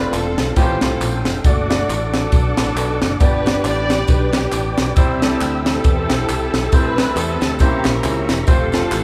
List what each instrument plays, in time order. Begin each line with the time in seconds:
Already playing: grand piano A3 C4 F4 D5, tonewheel organ C4 A4 F5, string section F4 B4
0.13 fingered electric bass E1, string section C4 F4 A4, clap, ride, tambourine
0.38 fingered electric bass B1, snare, ride, tambourine
0.56 fingered electric bass A1, grand piano A2 A3 F4 G4 C5, string section C4 C#4 G4, tonewheel organ G5, kick, ride, tambourine
0.62 grand piano C5
0.81 fingered electric bass C2, string section C4 C#4 A4, snare, clap, ride, tambourine
1.00 fingered electric bass A#1, clap, ride, tambourine
1.25 fingered electric bass F1, snare, ride, tambourine
1.44 fingered electric bass F#1, grand piano A3 D4 F#4 D5, string section A3 D4 F#4, tonewheel organ D5 F#5 D6, kick, ride, tambourine
1.70 grand piano A3 D4 F#4 D5, snare, ride, tambourine
1.88 fingered electric bass A1, clap, ride, tambourine
2.14 string section D4 F#4 A4, snare, ride, tambourine
2.32 fingered electric bass B1, kick, ride, tambourine
2.57 fingered electric bass A1, snare, clap, ride, tambourine
2.76 fingered electric bass B1, clap, ride, tambourine
3.01 fingered electric bass F#1, snare, ride, tambourine
3.20 fingered electric bass G1, grand piano G2 B3 D4 G4 D5, string section D4 G4 B4, tonewheel organ B4 G5, kick, ride, tambourine
3.46 grand piano B3 D4 G4 D5, snare, ride, tambourine
3.64 fingered electric bass A1, string section G4 B4 D5, clap, ride, tambourine
3.90 snare, ride, tambourine
4.07 fingered electric bass B1, string section D4 G4 B4, kick, ride, tambourine
4.33 string section B3 D4 G4, snare, clap, ride, tambourine
4.52 fingered electric bass A1, clap, ride, tambourine
4.78 fingered electric bass B1, snare, ride, tambourine
4.95 fingered electric bass C2, grand piano C3 G3 C4 E4 C5, string section C4 E4 G4, tonewheel organ G4 E5 E6, kick, ride, tambourine
5.22 grand piano G3 C4 E4 A4, snare, ride, tambourine
5.41 fingered electric bass D2, clap, ride, tambourine
5.66 string section C4 E4 A4, snare, ride, tambourine
5.84 fingered electric bass E2, kick, ride, tambourine
6.10 fingered electric bass B1, snare, clap, ride, tambourine
6.29 fingered electric bass C2, clap, ride, tambourine
6.54 fingered electric bass B1, snare, ride, tambourine
6.72 fingered electric bass C2, grand piano C3 A3 C4 E4 C5, string section E4 B4, tonewheel organ A5, kick, ride, tambourine
6.98 grand piano A3 C4 E4 B4, snare, ride, tambourine
7.16 fingered electric bass E2, string section C4 E4 A4, clap, ride, tambourine
7.41 fingered electric bass D2, snare, ride, tambourine
7.59 fingered electric bass C2, grand piano C3 A#3 C#4 E4 C5, string section A#3 E4 G4, tonewheel organ E5 A#5 C#6, kick, ride, tambourine
7.84 fingered electric bass A#1, string section C#4 E4 A#4, snare, clap, ride, tambourine
8.04 fingered electric bass C#2, clap, ride, tambourine
8.29 fingered electric bass E1, snare, ride, tambourine
8.47 fingered electric bass F1, grand piano A3 C4 F4 C5, string section C4 F4 A4, tonewheel organ A4 F5 C6, kick, ride, tambourine
8.72 grand piano A3 C4 F4 A4, snare, ride, tambourine
8.92 fingered electric bass A1, clap, ride, tambourine